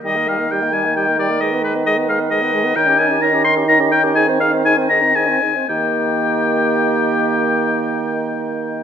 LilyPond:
<<
  \new Staff \with { instrumentName = "Oboe" } { \time 3/4 \key ees \major \tempo 4 = 123 ees''8 f''8 g''8 aes''8 g''8 d''8 | ees''8 ces''8 ees''8 f''8 ees''4 | g''8 aes''8 bes''8 c'''8 bes''8 g''8 | aes''8 f''8 aes''8 bes''8 aes''4 |
g''2.~ | g''2. | }
  \new Staff \with { instrumentName = "Flute" } { \time 3/4 \key ees \major g''16 ees''16 g''16 ees''16 g''16 ees''16 g''16 ees''16 g''16 ees''16 g''16 ees''16 | ces''16 ees''16 ces''16 ees''16 ces''16 ees''16 ces''16 ees''16 ces''16 ees''16 ces''16 ees''16 | des''16 ees''16 des''16 ees''16 des''16 ees''16 des''16 ees''16 des''16 ees''16 des''16 ees''16 | c''16 ees''16 c''16 ees''16 c''16 ees''16 c''16 ees''16 c''16 ees''16 c''16 ees''16 |
ees''2.~ | ees''2. | }
  \new Staff \with { instrumentName = "Clarinet" } { \time 3/4 \key ees \major g'16 bes'16 g'16 bes'16 g'16 bes'16 g'16 bes'16 g'16 bes'16 g'16 bes'16 | aes'16 ces''16 aes'16 ces''16 aes'16 ces''16 aes'16 ces''16 aes'16 ces''16 aes'16 ces''16 | bes'16 g'16 bes'16 g'16 bes'16 g'16 bes'16 g'16 bes'16 g'16 bes'16 g'16 | aes'16 c''16 aes'16 c''16 aes'16 c''16 aes'16 c''16 aes'16 c''16 aes'16 c''16 |
g'2.~ | g'2. | }
  \new Staff \with { instrumentName = "French horn" } { \time 3/4 \key ees \major g16 bes16 g16 bes16 g16 bes16 g16 bes16 g16 bes16 g16 bes16 | aes16 ces'16 aes16 ces'16 aes16 ces'16 aes16 ces'16 aes16 ces'16 aes16 ces'16 | ees'16 des'16 ees'16 des'16 ees'16 des'16 ees'16 des'16 ees'16 des'16 ees'16 des'16 | ees'16 c'16 ees'16 c'16 ees'16 c'16 ees'16 c'16 ees'16 c'16 ees'16 c'16 |
bes2.~ | bes2. | }
  \new Staff \with { instrumentName = "Bassoon" } { \clef bass \time 3/4 \key ees \major ees2.~ | ees2. | ees2.~ | ees2~ ees8 r8 |
ees2.~ | ees2. | }
>>